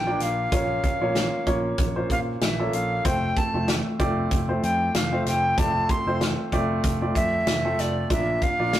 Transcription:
Already playing: A#1 A#3 D4 F4 G4 D5 G5
0.07 A#3 D4 F4 D5
0.16 G5
0.20 A#1 F5, snare, closed hi-hat
0.52 A#1 A#2 A#3 C#4 F4 C#5, kick, closed hi-hat
0.84 kick, closed hi-hat
1.01 A#1 A#3 C#4 F4 C#5
1.15 snare, closed hi-hat
1.47 A#1 A#3 C#4 F4 C#5, kick, closed hi-hat
1.78 A#1, kick, closed hi-hat
1.96 A#3 C#4 F4 C5
2.10 A#2 F5, kick, closed hi-hat
2.41 A#1 E5, snare, closed hi-hat
2.59 A#3 C#4 F4 A4
2.73 A#1 F5, closed hi-hat
3.05 F1 A3 C4 F4 C5 G5, kick, closed hi-hat
3.36 A5, kick, closed hi-hat
3.54 F1 A3 C4 F4 A4
3.68 snare, closed hi-hat
3.99 F1 A3 C4 F4 D5, kick, closed hi-hat
4.31 F1, kick, closed hi-hat
4.49 A3 C4 F4 C5
4.63 F2 G5, closed hi-hat
4.94 F1 F5, snare, closed hi-hat
5.12 A3 C4 F4 C5
5.26 F1 G5, snare, closed hi-hat
5.58 F1 A3 C4 F4 D5 A5, kick, closed hi-hat
5.89 C6, kick, closed hi-hat
6.07 F1 A3 C4 F4 C5
6.21 snare, closed hi-hat
6.52 F1 A3 C4 F4 D5, kick, closed hi-hat
6.84 F1, kick, closed hi-hat
7.02 A3 C4 F4 D5
7.15 F2 E5, kick, closed hi-hat
7.47 F1, snare, closed hi-hat
7.65 A3 C4 F4 A4
7.78 F1 D5, snare, closed hi-hat
8.10 A#1 A#2 A#3 D4 F4 D5 E5, kick, closed hi-hat
8.42 F5, kick, closed hi-hat
8.60 A#1 A#3 D4 F4 D5
8.73 snare, closed hi-hat

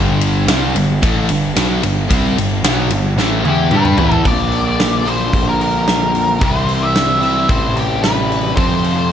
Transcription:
Already playing: G1 G2 D3 G3
0.21 ride
0.47 C2 C3 G3 C4, snare, ride
0.75 G1 G2 D3, ride
1.02 A1 A2 E3 A3, kick, ride
1.29 G1 G2 D3, ride
1.56 B1 B2 F#3 B3, snare, ride
1.82 G1 G2 D3, ride
2.09 C2 C3 G3 C4, kick, ride
2.37 G1 G2 D3, ride
2.63 B1 B2 F#3 B3, snare, ride
2.90 G1 G2 D3, ride
3.17 A1 A2 E3 A3, snare
3.44 E2 E3 B3 E4, high tom
3.49 G4
3.71 G2 G3 D4 G4, mid tom
3.75 B4
3.85 mid tom
3.98 E2 E3 B3 E4, floor tom
4.12 floor tom
4.24 A#1 A#2 D3 A#3 D4 D5, kick, open hi-hat
4.28 F4
4.52 open hi-hat
4.69 D5
4.80 snare, open hi-hat
5.05 A#2 D3 A#3 D4 F4 C5, open hi-hat
5.33 A#1, kick, open hi-hat
5.49 A#4
5.61 A#4, open hi-hat
5.87 snare, open hi-hat
6.15 open hi-hat
6.39 C2 C3 E3 G3 C4 E4, kick, open hi-hat
6.43 C5
6.69 open hi-hat
6.83 E5
6.95 snare, open hi-hat
7.21 C3 E3 G3 C4 E4 E5, open hi-hat
7.49 A1 C5, kick, open hi-hat
7.76 G4, open hi-hat
8.03 B4, snare, open hi-hat
8.32 open hi-hat
8.55 F2 C3 F3 A3 C4 F4 C5, kick, open hi-hat
8.84 open hi-hat
8.97 C5

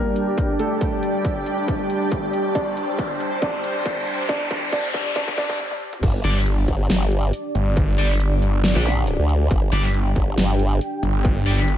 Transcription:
Already playing: G3 A#3 D4 G4 A#4 D5 G5, riser
0.16 closed hi-hat
0.22 A5
0.38 kick, closed hi-hat
0.59 A3 A4, closed hi-hat
0.81 kick, closed hi-hat
1.03 closed hi-hat
1.25 kick, closed hi-hat
1.46 closed hi-hat
1.68 kick, closed hi-hat
1.90 closed hi-hat
2.12 kick, closed hi-hat
2.33 closed hi-hat
2.55 D4 C5 D5, kick, closed hi-hat
2.77 closed hi-hat
2.99 kick, closed hi-hat
3.20 closed hi-hat
3.42 D4 D5, kick, closed hi-hat
3.64 closed hi-hat
3.86 kick, closed hi-hat
4.07 closed hi-hat
4.29 D4 D5, kick, closed hi-hat
4.51 kick, closed hi-hat
4.72 D4 D5, kick, closed hi-hat
4.94 kick, closed hi-hat
5.16 D4 D5, kick, closed hi-hat
5.28 kick
5.38 D4 D5, kick, closed hi-hat
5.50 kick
5.59 high tom
5.71 high tom
5.93 mid tom
6.03 G1 D4 G4 D5, kick, closed hi-hat, crash
6.24 G1 G3 D4 D5, closed hi-hat
6.46 closed hi-hat
6.68 G1, kick, closed hi-hat
6.90 G1, snare, closed hi-hat
7.12 closed hi-hat
7.33 closed hi-hat
7.55 G1, closed hi-hat
7.77 kick, closed hi-hat
7.98 G1 G3 D4 D5, closed hi-hat
8.20 closed hi-hat
8.42 G1, closed hi-hat
8.64 snare, closed hi-hat
8.75 A#1 G3 D4 D5
8.86 closed hi-hat, zap
9.07 closed hi-hat
9.19 D2
9.29 closed hi-hat
9.51 G1 G5, kick, closed hi-hat
9.72 G1 G3 D4 D5, closed hi-hat
9.94 closed hi-hat
10.16 G1, kick, closed hi-hat
10.38 G1, snare, closed hi-hat
10.59 closed hi-hat
10.81 closed hi-hat
11.03 G1, closed hi-hat
11.25 kick, closed hi-hat
11.46 G1 G3 D4 D5, closed hi-hat
11.68 closed hi-hat

